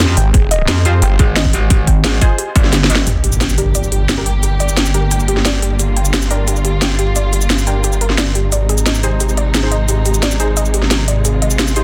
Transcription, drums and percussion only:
0.17 closed hi-hat medium
0.34 kick loud
0.34 closed hi-hat medium
0.51 closed hi-hat medium
0.68 snare loud
0.68 closed hi-hat loud
0.85 closed hi-hat medium
1.02 closed hi-hat medium
1.19 kick loud
1.19 closed hi-hat medium
1.36 snare loud
1.36 closed hi-hat loud
1.45 kick medium
1.53 closed hi-hat medium
1.70 kick loud
1.70 closed hi-hat loud
1.87 kick medium
1.87 closed hi-hat medium
2.04 snare loud
2.04 closed hi-hat loud
2.21 kick loud
2.21 closed hi-hat medium
2.38 closed hi-hat loud
2.56 kick loud
2.56 closed hi-hat medium
2.64 snare soft
2.73 snare medium
2.73 closed hi-hat loud
2.84 snare medium
2.90 closed hi-hat medium
2.95 snare loud
3.07 closed hi-hat loud
3.07 cabasa soft
3.24 closed hi-hat medium
3.32 cabasa medium
3.41 snare loud
3.41 closed hi-hat medium
3.41 cabasa soft
3.49 cabasa medium
3.58 closed hi-hat medium
3.58 cabasa soft
3.75 closed hi-hat loud
3.75 cabasa soft
3.83 cabasa soft
3.92 closed hi-hat medium
4.09 snare loud
4.09 closed hi-hat loud
4.09 cabasa soft
4.26 closed hi-hat medium
4.43 closed hi-hat medium
4.43 cabasa soft
4.60 closed hi-hat medium
4.60 cabasa soft
4.69 cabasa medium
4.77 snare loud
4.77 closed hi-hat medium
4.77 cabasa soft
4.86 cabasa medium
4.94 closed hi-hat medium
4.94 cabasa soft
5.11 closed hi-hat medium
5.11 cabasa soft
5.20 cabasa soft
5.28 closed hi-hat medium
5.37 snare soft
5.45 snare loud
5.45 closed hi-hat medium
5.45 cabasa soft
5.62 closed hi-hat medium
5.79 closed hi-hat medium
5.79 cabasa soft
5.97 closed hi-hat medium
6.05 cabasa medium
6.14 snare loud
6.14 closed hi-hat medium
6.14 cabasa soft
6.22 cabasa medium
6.31 closed hi-hat medium
6.31 cabasa soft
6.48 closed hi-hat medium
6.48 cabasa soft
6.56 cabasa soft
6.65 closed hi-hat medium
6.82 snare loud
6.82 closed hi-hat medium
6.82 cabasa soft
6.99 closed hi-hat medium
7.16 closed hi-hat medium
7.16 cabasa soft
7.33 closed hi-hat medium
7.33 cabasa soft
7.41 cabasa medium
7.50 snare loud
7.50 closed hi-hat medium
7.50 cabasa soft
7.58 cabasa medium
7.67 closed hi-hat medium
7.67 cabasa soft
7.84 closed hi-hat medium
7.84 cabasa soft
7.93 cabasa soft
8.01 closed hi-hat medium
8.10 snare soft
8.18 snare loud
8.18 closed hi-hat medium
8.18 cabasa soft
8.35 closed hi-hat medium
8.52 closed hi-hat medium
8.52 cabasa soft
8.69 closed hi-hat medium
8.78 cabasa medium
8.86 snare loud
8.86 closed hi-hat medium
8.86 cabasa soft
8.95 cabasa medium
9.03 closed hi-hat medium
9.03 cabasa soft
9.20 closed hi-hat medium
9.20 cabasa soft
9.29 cabasa soft
9.37 closed hi-hat medium
9.54 snare loud
9.54 closed hi-hat medium
9.54 cabasa soft
9.72 closed hi-hat medium
9.89 closed hi-hat medium
9.89 cabasa medium
10.06 closed hi-hat medium
10.06 cabasa soft
10.14 cabasa medium
10.23 snare loud
10.23 closed hi-hat medium
10.23 cabasa soft
10.31 cabasa medium
10.40 closed hi-hat medium
10.40 cabasa soft
10.57 closed hi-hat medium
10.57 cabasa soft
10.65 cabasa soft
10.74 closed hi-hat medium
10.82 snare soft
10.91 snare loud
10.91 closed hi-hat medium
10.91 cabasa soft
11.08 closed hi-hat medium
11.25 closed hi-hat medium
11.25 cabasa medium
11.42 closed hi-hat medium
11.51 cabasa medium
11.59 snare loud
11.59 closed hi-hat loud
11.59 cabasa medium
11.68 cabasa medium
11.76 closed hi-hat medium
11.76 cabasa soft

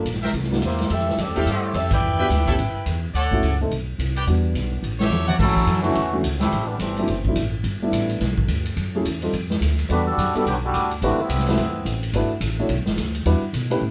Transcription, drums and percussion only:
0.05 kick soft
0.05 hi-hat pedal medium
0.05 ride medium
0.14 snare soft
0.23 snare soft
0.23 ride soft
0.33 kick soft
0.33 ride medium
0.43 snare soft
0.52 snare soft
0.62 kick soft
0.62 hi-hat pedal medium
0.62 ride medium
0.71 snare soft
0.78 snare soft
0.78 ride soft
0.90 kick soft
0.90 ride medium
0.99 snare soft
1.09 snare soft
1.18 kick soft
1.18 hi-hat pedal medium
1.18 ride medium
1.36 ride soft
1.46 kick soft
1.46 ride medium
1.74 kick soft
1.74 hi-hat pedal medium
1.74 ride medium
1.91 kick medium
1.91 ride medium
2.30 kick soft
2.30 snare soft
2.30 hi-hat pedal medium
2.30 ride medium
2.47 kick medium
2.47 ride soft
2.59 ride medium
2.86 kick soft
2.86 hi-hat pedal soft
2.86 ride medium
3.14 kick soft
3.14 ride medium
3.31 kick soft
3.43 kick soft
3.43 hi-hat pedal medium
3.43 ride medium
3.71 kick soft
3.71 ride medium
3.99 kick soft
3.99 hi-hat pedal medium
3.99 ride medium
4.16 ride soft
4.27 kick soft
4.27 ride medium
4.55 kick soft
4.55 hi-hat pedal medium
4.55 ride medium
4.83 kick soft
4.83 ride medium
5.00 snare medium
5.11 hi-hat pedal soft
5.11 mid tom soft
5.28 mid tom medium
5.39 kick medium
5.39 snare soft
5.39 crash medium
5.56 kick medium
5.67 kick soft
5.67 hi-hat pedal soft
5.67 ride medium
5.84 ride soft
5.95 kick soft
5.95 ride medium
6.24 kick soft
6.24 hi-hat pedal medium
6.24 ride medium
6.41 snare medium
6.41 ride soft
6.52 kick soft
6.52 ride medium
6.79 kick soft
6.79 hi-hat pedal medium
6.79 ride medium
6.96 ride soft
7.08 kick soft
7.08 ride medium
7.25 kick medium
7.36 kick soft
7.36 hi-hat pedal medium
7.36 ride medium
7.64 kick soft
7.64 ride medium
7.92 kick soft
7.92 hi-hat pedal medium
7.92 ride medium
8.09 ride soft
8.20 kick soft
8.20 snare soft
8.20 ride medium
8.37 kick medium
8.48 kick soft
8.48 hi-hat pedal medium
8.48 ride medium
8.65 ride soft
8.77 kick soft
8.77 ride medium
9.05 kick soft
9.05 hi-hat pedal medium
9.05 ride medium
9.22 ride soft
9.33 kick soft
9.33 ride medium
9.50 snare soft
9.62 kick soft
9.62 hi-hat pedal medium
9.62 ride medium
9.79 ride soft
9.89 kick soft
9.89 ride medium
10.18 kick soft
10.18 hi-hat pedal medium
10.18 ride medium
10.35 ride soft
10.46 kick soft
10.46 ride medium
10.74 kick soft
10.74 hi-hat pedal medium
10.74 ride medium
10.91 ride soft
11.02 kick soft
11.02 ride medium
11.29 kick soft
11.29 hi-hat pedal medium
11.29 ride medium
11.39 snare soft
11.46 snare soft
11.46 ride soft
11.57 kick soft
11.57 ride medium
11.86 kick soft
11.86 hi-hat pedal medium
11.86 ride medium
12.03 ride soft
12.13 kick soft
12.13 ride medium
12.41 kick soft
12.41 hi-hat pedal medium
12.41 ride medium
12.69 kick soft
12.69 ride medium
12.86 snare soft
12.98 kick soft
12.98 hi-hat pedal medium
12.98 ride medium
13.15 ride soft
13.26 kick soft
13.26 ride medium
13.54 kick soft
13.54 hi-hat pedal medium
13.54 ride medium
13.71 ride medium

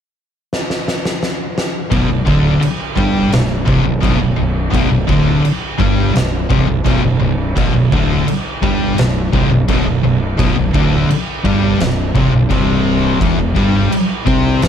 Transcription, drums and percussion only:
0.53 snare medium
0.70 snare medium
0.88 snare medium
1.05 snare medium
1.23 snare medium
1.58 snare loud
1.92 kick loud
1.92 crash medium
2.27 kick loud
2.62 crash medium
2.97 kick loud
3.32 snare loud
3.32 crash medium
3.68 kick loud
4.03 kick loud
4.03 crash medium
4.74 kick loud
4.74 crash medium
5.09 kick loud
5.45 crash medium
5.80 kick loud
6.16 snare loud
6.16 crash medium
6.50 kick loud
6.86 kick loud
6.86 crash medium
7.57 kick loud
7.57 crash medium
7.92 kick loud
8.28 crash medium
8.63 kick loud
8.98 snare loud
8.98 crash medium
9.33 kick loud
9.68 kick loud
9.68 crash medium
10.39 kick loud
10.39 crash medium
10.74 kick loud
11.11 crash medium
11.45 kick loud
11.80 snare loud
11.80 crash medium
12.16 kick loud
12.51 kick loud
12.51 crash medium
13.21 kick loud
13.21 crash medium
13.56 kick loud
13.92 crash medium
14.27 kick loud
14.62 snare loud
14.62 crash medium

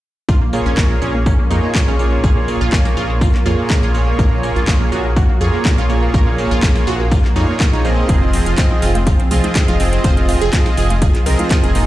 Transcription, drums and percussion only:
0.29 kick loud
0.29 tambourine medium
0.53 tambourine medium
0.66 snare soft
0.77 kick loud
0.77 snare loud
0.77 clap loud
0.77 tambourine medium
1.02 tambourine medium
1.26 kick loud
1.26 tambourine medium
1.51 tambourine medium
1.63 snare soft
1.75 kick loud
1.75 snare loud
1.75 clap loud
1.75 tambourine medium
1.99 tambourine medium
2.24 kick loud
2.24 tambourine medium
2.48 tambourine medium
2.61 snare soft
2.72 kick loud
2.72 snare loud
2.72 clap loud
2.72 tambourine medium
2.85 closed hi-hat soft
2.97 tambourine medium
3.21 kick loud
3.21 tambourine medium
3.34 clap soft
3.46 snare medium
3.46 tambourine medium
3.70 kick loud
3.70 snare loud
3.70 clap loud
3.70 tambourine medium
3.94 tambourine medium
4.19 kick loud
4.19 tambourine medium
4.43 tambourine medium
4.56 snare soft
4.68 kick loud
4.68 snare loud
4.68 clap loud
4.68 tambourine medium
4.92 tambourine medium
5.16 kick loud
5.16 tambourine medium
5.41 tambourine medium
5.54 snare soft
5.65 kick loud
5.65 snare loud
5.65 clap loud
5.65 tambourine medium
5.90 tambourine medium
6.14 kick loud
6.14 tambourine medium
6.38 tambourine medium
6.51 snare soft
6.63 kick loud
6.63 snare loud
6.63 clap loud
6.63 tambourine medium
6.76 closed hi-hat soft
6.87 tambourine medium
7.11 kick loud
7.11 tambourine medium
7.24 clap soft
7.36 snare medium
7.36 tambourine medium
7.60 kick loud
7.60 snare loud
7.60 clap loud
7.60 tambourine medium
7.85 tambourine medium
8.09 kick loud
8.09 closed hi-hat medium
8.09 tambourine medium
8.33 open hi-hat loud
8.33 tambourine medium
8.46 snare soft
8.46 closed hi-hat soft
8.58 kick loud
8.58 snare loud
8.58 clap loud
8.58 closed hi-hat medium
8.58 tambourine medium
8.71 high conga medium
8.82 open hi-hat medium
8.82 tambourine medium
8.95 closed hi-hat soft
8.95 high bongo medium
8.95 low conga medium
9.07 kick loud
9.07 closed hi-hat medium
9.07 tambourine medium
9.20 closed hi-hat soft
9.31 open hi-hat loud
9.31 tambourine medium
9.31 low conga medium
9.44 snare soft
9.44 closed hi-hat soft
9.44 high conga medium
9.44 low conga medium
9.55 kick loud
9.55 snare loud
9.55 clap loud
9.55 closed hi-hat medium
9.55 tambourine medium
9.68 closed hi-hat soft
9.68 high conga medium
9.80 open hi-hat medium
9.80 tambourine medium
9.93 closed hi-hat soft
10.04 kick loud
10.04 closed hi-hat medium
10.04 tambourine medium
10.17 closed hi-hat soft
10.29 open hi-hat medium
10.29 tambourine medium
10.29 high bongo medium
10.41 snare soft
10.41 closed hi-hat soft
10.53 kick loud
10.53 snare loud
10.53 clap loud
10.53 closed hi-hat medium
10.53 tambourine medium
10.66 closed hi-hat soft
10.66 high conga medium
10.77 open hi-hat medium
10.77 tambourine medium
10.90 closed hi-hat medium
10.90 high bongo medium
10.90 low conga medium
11.02 kick loud
11.02 closed hi-hat medium
11.02 tambourine medium
11.15 clap soft
11.15 closed hi-hat soft
11.26 snare medium
11.26 open hi-hat loud
11.26 tambourine medium
11.39 closed hi-hat medium
11.39 high conga medium
11.39 low conga medium
11.51 kick loud
11.51 snare loud
11.51 clap loud
11.51 closed hi-hat medium
11.51 tambourine medium
11.63 closed hi-hat soft
11.63 high conga medium
11.63 low conga medium
11.75 open hi-hat medium
11.75 tambourine medium

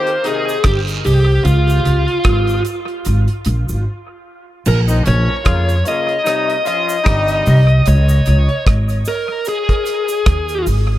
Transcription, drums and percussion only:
0.07 closed hi-hat soft
0.24 closed hi-hat medium
0.24 cabasa soft
0.49 cabasa medium
0.64 kick loud
0.64 cross-stick loud
0.64 closed hi-hat medium
0.64 long guiro medium
0.87 closed hi-hat medium
0.87 cabasa medium
1.04 open hi-hat medium
1.04 cabasa medium
1.45 closed hi-hat loud
1.45 cabasa medium
1.67 closed hi-hat soft
1.67 cabasa medium
1.85 closed hi-hat medium
1.85 cabasa soft
2.08 closed hi-hat soft
2.24 kick loud
2.24 cross-stick loud
2.24 closed hi-hat medium
2.47 closed hi-hat soft
2.47 cabasa soft
2.65 closed hi-hat medium
2.65 cabasa medium
2.88 closed hi-hat soft
3.05 closed hi-hat medium
3.05 cabasa medium
3.28 closed hi-hat soft
3.45 closed hi-hat medium
3.45 cabasa soft
3.69 cabasa medium
4.66 crash medium
4.66 cabasa medium
4.88 closed hi-hat soft
4.88 cabasa medium
5.06 closed hi-hat medium
5.06 cabasa soft
5.45 kick loud
5.45 cross-stick loud
5.45 closed hi-hat medium
5.69 closed hi-hat soft
5.69 cabasa soft
5.85 closed hi-hat medium
5.85 cabasa medium
6.09 closed hi-hat soft
6.26 cross-stick medium
6.26 closed hi-hat medium
6.26 cabasa medium
6.50 closed hi-hat soft
6.66 closed hi-hat medium
6.66 cabasa soft
6.89 closed hi-hat soft
6.89 cabasa medium
7.06 kick loud
7.06 cross-stick loud
7.06 closed hi-hat loud
7.28 closed hi-hat medium
7.28 cabasa medium
7.46 open hi-hat medium
7.46 cabasa medium
7.69 closed hi-hat soft
7.86 closed hi-hat loud
7.86 cabasa medium
8.08 closed hi-hat soft
8.08 cabasa medium
8.26 closed hi-hat medium
8.26 cabasa soft
8.49 closed hi-hat soft
8.66 kick loud
8.66 cross-stick loud
8.66 closed hi-hat medium
8.88 closed hi-hat soft
8.88 cabasa soft
9.05 open hi-hat soft
9.05 cabasa medium
9.45 closed hi-hat medium
9.45 cabasa medium
9.69 kick medium
9.69 closed hi-hat soft
9.86 closed hi-hat medium
9.86 cabasa soft
10.08 closed hi-hat soft
10.08 cabasa medium
10.26 kick loud
10.26 cross-stick loud
10.26 closed hi-hat loud
10.48 closed hi-hat medium
10.48 cabasa soft
10.66 open hi-hat medium
10.66 cabasa medium

